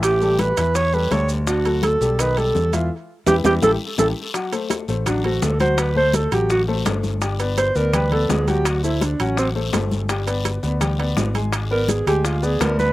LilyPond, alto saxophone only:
\new Staff \with { instrumentName = "Alto saxophone" } { \time 4/4 \key d \mixolydian \tempo 4 = 167 g'4 b'4 cis''8 b'8 cis''8 r8 | fis'4 a'4 b'8 a'4 f'8 | r4 g'8 g'8 a'8 r8 a'8 r8 | r2 d'8 fis'8 a'8 c''8 |
b'8 c''8 a'8 g'8 fis'8 r4. | r4 c''8 bes'8 b'8 a'8 gis'8 g'8 | fis'8 e'8 d'8 cis'8 c'8 r4. | r1 |
r8 bes'8 gis'8 g'8 f'8 gis'8 bes'8 b'8 | }